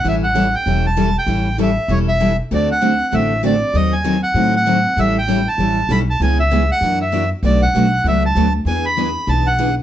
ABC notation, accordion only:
X:1
M:4/4
L:1/8
Q:"Swing" 1/4=195
K:Amix
V:1 name="Accordion"
e f2 g2 a2 g- | g2 e2 c e2 z | d f3 e2 d2 | ^d ^g2 f2 f3 |
e g2 a3 b a | ^g e2 f2 e2 z | d f3 e a2 z | ^g b3 a f2 z |]